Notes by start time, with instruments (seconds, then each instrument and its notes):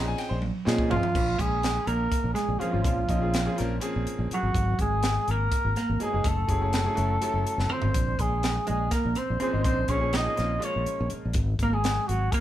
Already playing: fretless electric bass A#1, grand piano F3 C4 C#4 D#4 G#4
0.08 grand piano G#5
0.18 grand piano G5, snare, ride
0.29 fretless electric bass A#1, grand piano C5
0.42 high tom
0.65 fretless electric bass A#2, grand piano F3 C4 C#4 D#4 G#4, snare
0.78 kick
0.90 fretless electric bass A#1, hollow-body jazz guitar F3, trumpet F4, floor tom
1.03 floor tom
1.15 fretless electric bass A#1, kick, crash
1.38 fretless electric bass A#1, hollow-body jazz guitar G#3, trumpet G#4, kick, closed hi-hat
1.63 snare, closed hi-hat
1.87 fretless electric bass A#1, hollow-body jazz guitar A#3, trumpet A#4, closed hi-hat
2.12 kick, closed hi-hat
2.24 fretless electric bass A#1
2.34 hollow-body jazz guitar G#3, trumpet G#4, snare, closed hi-hat
2.48 fretless electric bass A#1
2.59 grand piano F3 A#3 C4 C#4 G#4, hollow-body jazz guitar F3, trumpet F4, muted fretless electric bass stroke, closed hi-hat
2.71 fretless electric bass G#1, grand piano F3 A#3 C4 C#4 F4
2.83 fretless electric bass A#1, hollow-body jazz guitar F3, trumpet F4, kick, closed hi-hat
3.08 fretless electric bass A#1, grand piano F3 A#3 C4 C#4 D#4, kick, closed hi-hat
3.20 grand piano F3 A#3 C4 C#4 G#4
3.34 snare, closed hi-hat
3.45 grand piano F3 A#3 C4 C#4 G#4
3.56 fretless electric bass A#1, grand piano F3 A#3 C4 C#4 A#4, snare, closed hi-hat
3.80 grand piano F3 A#3 C4 C#4 G#4, closed hi-hat
3.96 fretless electric bass A#1
4.07 closed hi-hat
4.19 fretless electric bass A#1
4.31 hollow-body jazz guitar F#3, trumpet F#4, closed hi-hat
4.43 fretless electric bass G#1
4.54 fretless electric bass G#1, kick, closed hi-hat
4.79 fretless electric bass G#1, hollow-body jazz guitar G#3, trumpet G#4, kick, closed hi-hat
5.03 snare, closed hi-hat
5.28 fretless electric bass G#1, hollow-body jazz guitar A#3, trumpet A#4, closed hi-hat
5.52 kick, closed hi-hat
5.65 fretless electric bass G#1
5.76 hollow-body jazz guitar A#3, trumpet A#4, snare, closed hi-hat
5.89 fretless electric bass G#1
6.00 grand piano F#3 A#3 B3 D#4 G#4, hollow-body jazz guitar G#3, trumpet G#4, closed hi-hat
6.12 fretless electric bass F#1, grand piano F#3 A#3 B3 D#4 G#4
6.24 fretless electric bass F#1, hollow-body jazz guitar A3, trumpet A4, kick, closed hi-hat
6.48 fretless electric bass F#1, grand piano F#3 A3 C#4 E4 G#4, kick, closed hi-hat
6.60 grand piano F#3 A3 C#4 E4 G#4
6.73 snare, closed hi-hat
6.84 grand piano F#3 A3 C#4 E4 G#4
6.95 fretless electric bass F#1, grand piano F#3 A3 C#4 E4 F#4, closed hi-hat
7.21 grand piano F#3 A3 C#4 E4 A4, closed hi-hat
7.34 fretless electric bass F#1
7.47 closed hi-hat
7.58 fretless electric bass F#1, snare
7.69 hollow-body jazz guitar C4, trumpet C5, mid tom
7.82 fretless electric bass G#1, floor tom
7.94 fretless electric bass A#1, kick, closed hi-hat
8.19 fretless electric bass A#1, hollow-body jazz guitar G#3, trumpet G#4, kick, closed hi-hat
8.43 snare, closed hi-hat
8.67 fretless electric bass A#1, hollow-body jazz guitar G#3, trumpet G#4, closed hi-hat
8.91 hollow-body jazz guitar A#3, trumpet A#4, kick, snare, closed hi-hat
9.05 fretless electric bass A#1
9.15 hollow-body jazz guitar C4, trumpet C5, closed hi-hat
9.30 fretless electric bass A#1
9.40 grand piano F3 A#3 C4 C#4 G#4, hollow-body jazz guitar C4, trumpet C5, muted fretless electric bass stroke, closed hi-hat
9.51 fretless electric bass G#1, grand piano F3 A#3 C4 C#4 D#4
9.64 fretless electric bass A#1, hollow-body jazz guitar C4, trumpet C5, kick, closed hi-hat
9.88 fretless electric bass A#1, grand piano F3 A#3 C4 C#4 G#4, hollow-body jazz guitar C#4, trumpet C#5, kick, closed hi-hat
10.00 grand piano F3 A#3 C4 C#4 G#4
10.13 hollow-body jazz guitar D#4, trumpet D#5, snare, closed hi-hat
10.24 grand piano F3 A#3 C4 C#4 G#4
10.36 fretless electric bass A#1, grand piano F3 A#3 C4 C#4 F4, snare, closed hi-hat
10.59 grand piano F3 G#3 A#3 C#4 F4, closed hi-hat
10.63 hollow-body jazz guitar C#4, trumpet C#5
10.76 fretless electric bass A#1
10.86 closed hi-hat
11.00 fretless electric bass A#1
11.10 muted fretless electric bass stroke, closed hi-hat
11.25 fretless electric bass A#1
11.33 fretless electric bass G#1, kick, closed hi-hat
11.59 fretless electric bass G#1, hollow-body jazz guitar A#3, trumpet A#4, kick, closed hi-hat
11.73 hollow-body jazz guitar G#3, trumpet G#4
11.84 snare, closed hi-hat
12.07 fretless electric bass G#1, hollow-body jazz guitar F#3, trumpet F#4, closed hi-hat
12.32 hollow-body jazz guitar A#3, trumpet A#4, kick, closed hi-hat